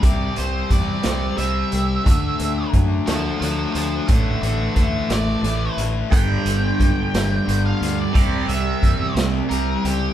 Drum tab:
HH |xxxxxx|xxxxxx|xxxxxx|xxxxxx|
SD |---o--|---o--|---o--|---o--|
BD |o-o---|o-o---|o-o---|o-o---|

HH |xxxxxx|
SD |---o--|
BD |o-o---|